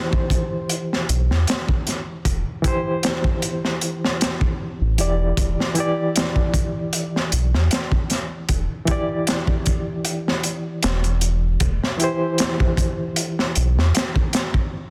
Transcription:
Already playing: reed electric piano E3 E4 G4 C5
0.13 kick
0.30 kick, closed hi-hat
0.69 closed hi-hat
0.93 snare
1.09 analog synth bass B1, closed hi-hat
1.30 analog synth bass E2, snare
1.47 snare, closed hi-hat
1.69 kick
1.87 snare, closed hi-hat
2.25 analog synth bass E1, kick, closed hi-hat
2.62 reed electric piano E3 E4 G4, kick, closed hi-hat
2.68 reed electric piano C5
3.03 snare, closed hi-hat
3.24 kick
3.42 closed hi-hat
3.65 snare
3.81 closed hi-hat
4.04 snare
4.21 snare, closed hi-hat
4.41 kick
4.81 analog synth bass A1
4.98 analog synth bass E1, reed electric piano E3 E4 G4 D5, closed hi-hat
5.37 analog synth bass E1, kick, closed hi-hat
5.60 snare
5.74 reed electric piano E3 E4, closed hi-hat
5.78 reed electric piano G4 D5
6.16 snare, closed hi-hat
6.36 kick
6.54 kick, closed hi-hat
6.93 closed hi-hat
7.16 snare
7.32 analog synth bass B1, closed hi-hat
7.54 analog synth bass E2, snare
7.71 snare, closed hi-hat
7.92 kick
8.10 snare, closed hi-hat
8.49 analog synth bass E1, kick, closed hi-hat
8.85 reed electric piano E3 E4, kick, closed hi-hat
8.90 reed electric piano G4 D5
9.27 snare, closed hi-hat
9.47 kick
9.66 kick, closed hi-hat
10.05 closed hi-hat
10.28 snare
10.43 closed hi-hat
10.83 analog synth bass E1, snare, closed hi-hat
11.04 closed hi-hat
11.21 closed hi-hat
11.60 analog synth bass E1, kick, closed hi-hat
11.83 snare
11.98 reed electric piano E3 E4 G4, closed hi-hat
12.04 reed electric piano C5
12.38 snare, closed hi-hat
12.60 kick
12.77 kick, closed hi-hat
13.16 closed hi-hat
13.39 snare
13.55 analog synth bass B1, closed hi-hat
13.77 analog synth bass E2, snare
13.95 snare, closed hi-hat
14.16 kick
14.33 snare, closed hi-hat
14.54 kick

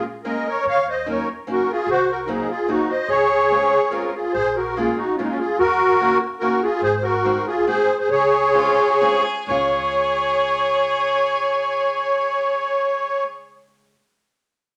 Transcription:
0.24 steel-string acoustic guitar G#3 A#3 C#4 F4, accordion A#4 D#5
0.46 accordion A#4 C#5
0.65 upright bass D#2, accordion C#5
0.69 accordion F5
0.89 accordion C5 D#5
1.06 steel-string acoustic guitar F#3 A#3 C#4 D#4, accordion A#4
1.12 accordion C#5
1.47 steel-string acoustic guitar F#3 A#3 C#4 D#4
1.51 accordion F#4 A#4
1.70 accordion F4 G#4
1.87 upright bass C2, accordion F#4
1.91 accordion C5
2.09 accordion F#4 A#4
2.27 steel-string acoustic guitar F#3 A#3 C4 D#4, accordion D#4 G#4
2.49 accordion F4 G#4
2.68 steel-string acoustic guitar F#3 A#3 C4 D#4, accordion D#4 F#4
2.90 accordion C5 D#5
3.08 upright bass C#2, accordion G#4 C#5
3.50 steel-string acoustic guitar G#3 C4 C#4 F4
3.90 steel-string acoustic guitar G#3 C4 C#4 F4, accordion F4 A#4
4.14 accordion F4 G#4
4.33 upright bass A#1, accordion G#4 C5
4.56 accordion F#4 A#4
4.75 steel-string acoustic guitar G#3 A#3 C#4 F4, accordion F4 G#4
4.96 accordion D#4 F#4
5.15 accordion C#4 F4
5.19 steel-string acoustic guitar G#3 A#3 C#4 F4, accordion D#4
5.27 accordion C#4 F4
5.39 accordion F4 G#4
5.59 upright bass D#2, accordion F#4 A#4
6.01 steel-string acoustic guitar A#3 C#4 D#4 F#4
6.40 steel-string acoustic guitar A#3 C#4 D#4 F#4, accordion F#4 A#4
6.63 accordion F4 G#4
6.82 upright bass G#1, accordion G#4 C5
6.96 accordion C5
7.03 accordion F#4 A#4
7.25 steel-string acoustic guitar G#3 C4 D#4 F#4
7.47 accordion F4 G#4
7.67 steel-string acoustic guitar G#3 C4 D#4 F#4, accordion G#4 C5
7.99 accordion G#4 C5
8.09 upright bass C#2, accordion G#4 C#5
8.53 steel-string acoustic guitar G#3 C4 C#4 F4, violin F4
8.88 violin F#4
9.00 steel-string acoustic guitar G#3 C4 C#4 F4, violin G#4
9.46 upright bass C#2, steel-string acoustic guitar G#3 C#4, violin G#4, accordion C#5
9.51 steel-string acoustic guitar F4

